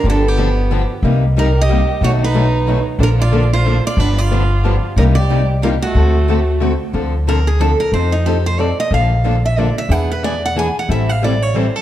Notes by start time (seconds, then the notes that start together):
0.04 G1 D3 F3 B3 D4 G4
0.10 A4
0.26 B3 G4
0.37 D3 F3 B3 D4 G4
0.71 D3 F3 B3 D4 G4
1.03 C2 C3 G3 A#3 D#4 G4
1.36 C3 G3 A#3 D#4 G4 A#4
1.58 G4 D#5
1.69 C3 G3 A#3 D#4 G4
2.01 B1 B2 D#3 F#3 A3 B3 D#4 F#4 A4 C#5
2.20 D#4
2.24 B4
2.34 B2 D#3 F#3 A3 B3 D#4 F#4 A4
2.67 B2 D#3 F#3 A3 B3 D#4 F#4 A4
2.99 A#1 D3 F3 A#3 D4 A4
3.03 A#4
3.19 F4 D5
3.33 D3 F3 A#3 D4 A4
3.53 F4 C5
3.65 D3 F3 A#3 D4 A4
3.85 F4 D5
3.97 G1 D3 F3 B3 D4 G4 B4
4.18 F4 D5
4.31 D3 F3 B3 D4 G4
4.65 D3 F3 B3 D4 G4
4.96 C2 C3 G3 A#3 D#4 G4 A#4
5.15 G4 D5
5.29 C3 G3 A#3 D#4 G4
5.62 C3 G3 A#3 D#4 F4 G4
5.82 A3 F#4
5.95 D2 D3 A3 C4 F#4 A4
6.28 D3 A3 C4 F#4 A4
6.61 D3 A3 C4 F#4 A4
6.93 D2 D3 F3 C4 D4 A4
7.27 D3 F3 C4 D4 A4 A#4
7.47 G#4
7.59 D3 F3 C4 D4 A4
7.80 A#4
7.92 F2 F3 C4 D#4 A4 C5
8.12 D#4
8.26 F3 C4 D#4 G4 A4
8.46 C5
8.59 F3 C4 D#4 A4 D5
8.80 D#5
8.91 A#1 D3 F3 A#3 D4 A4 F5
9.24 D3 F3 A#3 D4 A4
9.46 E5
9.57 D3 F3 A#3 D4 A4 D5
9.78 E5
9.89 E2 E3 B3 D4 G#4 B4 F#5
10.12 B4
10.24 E3 B3 D4 G#4 B4 D5
10.46 F#5
10.56 E3 B3 D4 G#4 B4 G#5
10.79 F#5
10.89 A1 E3 G3 C4 E4 A4 E5
11.09 F5
11.23 E3 G3 C4 E4 A4 D5
11.42 C#5
11.54 E3 G3 C4 E4 A4 C5
11.76 A4